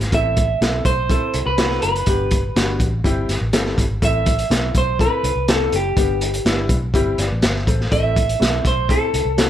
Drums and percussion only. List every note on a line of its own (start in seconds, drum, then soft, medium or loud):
0.01 snare soft
0.01 closed hi-hat medium
0.12 kick medium
0.12 closed hi-hat medium
0.37 kick medium
0.37 closed hi-hat medium
0.62 snare loud
0.62 closed hi-hat medium
0.85 kick medium
0.85 closed hi-hat medium
1.10 kick medium
1.10 closed hi-hat medium
1.34 closed hi-hat medium
1.58 snare loud
1.58 closed hi-hat medium
1.71 snare soft
1.82 closed hi-hat medium
1.96 closed hi-hat soft
2.06 kick medium
2.06 closed hi-hat medium
2.31 kick medium
2.31 closed hi-hat medium
2.56 snare loud
2.56 closed hi-hat medium
2.80 kick medium
2.80 closed hi-hat medium
3.04 kick medium
3.04 closed hi-hat medium
3.29 snare soft
3.29 closed hi-hat medium
3.53 snare loud
3.53 closed hi-hat medium
3.66 snare soft
3.78 kick medium
3.78 closed hi-hat medium
4.02 kick medium
4.02 closed hi-hat medium
4.26 kick medium
4.26 closed hi-hat medium
4.39 closed hi-hat medium
4.51 snare loud
4.51 closed hi-hat medium
4.75 kick medium
4.75 closed hi-hat medium
4.99 kick medium
4.99 closed hi-hat medium
5.24 closed hi-hat medium
5.48 snare loud
5.48 closed hi-hat medium
5.72 closed hi-hat medium
5.97 kick medium
5.97 closed hi-hat medium
6.21 closed hi-hat medium
6.34 closed hi-hat medium
6.46 snare loud
6.46 closed hi-hat medium
6.69 kick medium
6.69 closed hi-hat medium
6.94 kick medium
6.94 closed hi-hat medium
7.18 snare soft
7.18 closed hi-hat medium
7.42 snare loud
7.42 closed hi-hat medium
7.55 snare soft
7.67 kick medium
7.67 closed hi-hat medium
7.81 snare soft
7.92 kick medium
7.92 closed hi-hat medium
8.16 kick loud
8.16 closed hi-hat medium
8.29 closed hi-hat medium
8.42 snare loud
8.42 closed hi-hat medium
8.65 kick medium
8.65 closed hi-hat medium
8.89 kick medium
8.89 closed hi-hat medium
9.14 closed hi-hat medium
9.38 snare loud
9.38 closed hi-hat medium